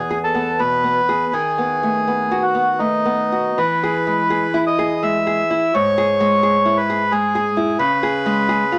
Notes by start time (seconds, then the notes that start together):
Already playing: E2 B3 G#4
0.11 G#4
0.24 A4
0.35 B3
0.59 B2 B4
0.84 B3
1.09 G#4
1.33 D#3 G#4
1.58 B3
1.83 A3
2.08 B3
2.32 F#4
2.42 F#4
2.55 B3
2.79 A3 D#4
3.06 B3
3.32 F#4
3.58 E3 B4
3.83 G#4
4.07 G#3
4.30 G#4
4.54 E4
4.67 D#5
4.79 G#4
5.03 G#3 E5
5.27 G#4
5.50 E4
5.74 G#2 C#5
5.98 G#4
6.20 G#3
6.43 G#4
6.65 E4
6.77 B4
6.90 G#4
7.11 G#3 G#4
7.35 G#4
7.57 E4
7.79 C#3 B4
8.03 G#4
8.26 G#3
8.49 G#4
8.72 F4